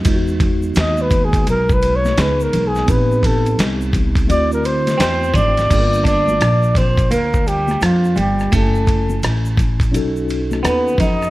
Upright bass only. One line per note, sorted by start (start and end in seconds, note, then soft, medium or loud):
0.05 0.72 E2 medium
0.76 1.43 D#2 loud
1.47 2.14 B1 loud
2.17 2.51 C#2 loud
2.53 2.86 B1 medium
2.88 3.55 A1 loud
3.59 4.26 C2 loud
4.29 4.96 D2 loud
4.99 5.33 E2 loud
5.33 5.68 G#1 medium
5.71 6.37 G1 medium
6.40 7.07 A#1 medium
7.11 7.78 D2 medium
7.81 8.15 F2 medium
8.17 8.50 G1 medium
8.52 9.20 F#1 medium
9.23 9.94 A1 medium
9.94 10.61 B1 loud
10.64 10.97 D#2 loud
10.98 11.30 F2 medium